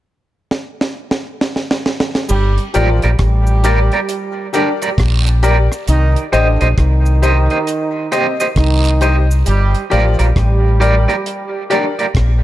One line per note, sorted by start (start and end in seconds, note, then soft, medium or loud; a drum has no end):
0.51 snare medium
0.81 snare medium
1.11 snare medium
1.41 snare medium
1.56 snare medium
1.71 snare medium
1.86 snare medium
2.00 snare loud
2.15 snare medium
2.29 2.57 G1 loud
2.29 2.65 G3 loud
2.29 2.65 G4 loud
2.29 crash medium
2.29 cabasa medium
2.58 closed hi-hat soft
2.74 3.02 A1 medium
2.74 3.10 F3 medium
2.74 3.10 F4 medium
2.74 2.97 G4 medium
2.74 2.88 G4 medium
2.74 2.97 A#4 medium
2.74 2.89 A#4 medium
2.74 2.97 D5 loud
2.74 2.89 D5 medium
2.74 closed hi-hat medium
2.74 cabasa soft
3.02 3.19 A#1 medium
3.02 3.10 G4 medium
3.02 3.10 A#4 medium
3.02 3.09 D5 medium
3.02 closed hi-hat medium
3.18 3.88 A1 medium
3.18 4.49 G3 medium
3.18 4.49 G4 loud
3.18 kick loud
3.18 cross-stick loud
3.18 closed hi-hat medium
3.47 cabasa soft
3.63 3.86 G4 medium
3.63 3.78 G4 medium
3.63 3.87 A#4 medium
3.63 3.78 A#4 loud
3.63 3.87 D5 medium
3.63 3.78 D5 medium
3.63 closed hi-hat medium
3.63 cabasa medium
3.92 3.99 G4 soft
3.92 3.99 A#4 medium
3.92 3.99 D5 medium
3.92 closed hi-hat soft
4.09 closed hi-hat medium
4.09 cabasa medium
4.53 4.70 D3 medium
4.53 4.71 D4 medium
4.53 4.76 G4 medium
4.53 4.67 G4 medium
4.53 4.76 A#4 medium
4.53 4.68 A#4 medium
4.53 4.77 D5 medium
4.53 4.68 D5 medium
4.53 closed hi-hat medium
4.53 cabasa medium
4.82 4.89 G4 medium
4.82 4.89 A#4 soft
4.82 4.89 A#4 medium
4.82 4.89 D5 soft
4.82 4.88 D5 medium
4.82 closed hi-hat soft
4.82 cabasa medium
4.98 5.67 A#1 medium
4.98 kick loud
4.98 cross-stick loud
4.98 closed hi-hat medium
4.98 long guiro medium
5.26 closed hi-hat soft
5.26 cabasa soft
5.42 5.65 G4 medium
5.42 5.57 G4 medium
5.42 5.66 A#4 medium
5.42 5.57 A#4 medium
5.42 5.66 D5 medium
5.42 5.57 D5 medium
5.42 closed hi-hat medium
5.42 cabasa medium
5.72 cross-stick medium
5.72 cabasa medium
5.88 6.15 C2 loud
5.88 6.24 D#3 loud
5.88 6.24 D#4 loud
5.88 closed hi-hat medium
5.88 cabasa medium
6.16 closed hi-hat medium
6.32 6.60 A1 medium
6.32 6.69 D3 medium
6.32 6.69 D4 medium
6.32 6.55 G4 medium
6.32 6.46 G4 medium
6.32 6.46 C5 medium
6.32 6.56 C5 medium
6.32 6.56 D#5 loud
6.32 6.47 D#5 medium
6.32 closed hi-hat medium
6.32 cabasa soft
6.61 6.77 A#1 medium
6.61 6.68 G4 soft
6.61 6.67 C5 medium
6.61 6.67 D#5 medium
6.61 closed hi-hat medium
6.78 7.47 C2 loud
6.78 8.08 D#3 loud
6.78 8.08 D#4 loud
6.78 kick loud
6.78 cross-stick loud
6.78 closed hi-hat medium
7.06 cabasa soft
7.22 7.45 G4 medium
7.22 7.36 G4 medium
7.22 7.45 C5 medium
7.22 7.36 C5 medium
7.22 7.45 D#5 medium
7.22 7.36 D#5 loud
7.22 closed hi-hat medium
7.22 cabasa medium
7.50 7.57 G4 soft
7.50 7.57 C5 soft
7.50 7.57 D#5 medium
7.50 closed hi-hat soft
7.67 closed hi-hat medium
7.67 cabasa medium
8.12 8.35 C3 medium
8.12 8.35 C4 medium
8.12 8.34 G4 medium
8.12 8.25 G4 medium
8.12 8.35 C5 medium
8.12 8.25 C5 medium
8.12 8.26 D#5 medium
8.12 8.35 D#5 medium
8.12 closed hi-hat medium
8.12 cabasa medium
8.40 8.47 G4 medium
8.40 8.47 C5 soft
8.40 8.47 C5 medium
8.40 8.46 D#5 medium
8.40 8.47 D#5 soft
8.40 closed hi-hat soft
8.40 cabasa medium
8.56 9.42 C2 loud
8.56 9.26 D#3 medium
8.56 9.26 D#4 loud
8.56 kick medium
8.56 cross-stick loud
8.56 closed hi-hat medium
8.56 long guiro medium
8.84 closed hi-hat soft
8.84 cabasa soft
9.01 9.24 G4 medium
9.01 9.15 G4 medium
9.01 9.24 C5 medium
9.01 9.15 C5 medium
9.01 9.24 D#5 loud
9.01 9.15 D#5 medium
9.01 closed hi-hat medium
9.01 cabasa medium
9.31 cabasa medium
9.46 9.74 G1 loud
9.46 9.82 G3 loud
9.46 9.82 G4 loud
9.46 closed hi-hat medium
9.46 cabasa medium
9.75 closed hi-hat soft
9.90 10.18 A1 medium
9.90 10.27 F3 medium
9.90 10.27 F4 loud
9.90 10.04 G4 medium
9.90 10.13 G4 medium
9.90 10.14 A#4 medium
9.90 10.05 A#4 medium
9.90 10.05 D5 medium
9.90 10.14 D5 loud
9.90 closed hi-hat medium
10.19 10.35 A#1 medium
10.19 10.26 G4 medium
10.19 10.25 A#4 medium
10.19 10.25 D5 medium
10.19 closed hi-hat medium
10.36 11.05 A1 medium
10.36 11.66 G3 loud
10.36 11.66 G4 loud
10.36 kick loud
10.36 cross-stick loud
10.36 closed hi-hat medium
10.80 10.94 G4 medium
10.80 11.03 G4 medium
10.80 10.94 A#4 loud
10.80 11.03 A#4 medium
10.80 10.94 D5 loud
10.80 11.04 D5 medium
10.80 closed hi-hat medium
11.08 11.15 G4 medium
11.08 11.15 A#4 medium
11.08 11.15 D5 medium
11.08 closed hi-hat soft
11.26 closed hi-hat medium
11.70 11.88 D3 medium
11.70 11.88 D4 medium
11.70 11.93 G4 medium
11.70 11.84 G4 medium
11.70 11.84 A#4 medium
11.70 11.93 A#4 medium
11.70 11.93 D5 medium
11.70 11.84 D5 loud
11.70 closed hi-hat medium
11.99 12.05 G4 medium
11.99 12.05 A#4 soft
11.99 12.05 A#4 medium
11.99 12.05 D5 soft
11.99 12.05 D5 medium
11.99 closed hi-hat soft
12.15 12.44 A#1 medium
12.15 kick loud
12.15 cross-stick loud
12.15 closed hi-hat medium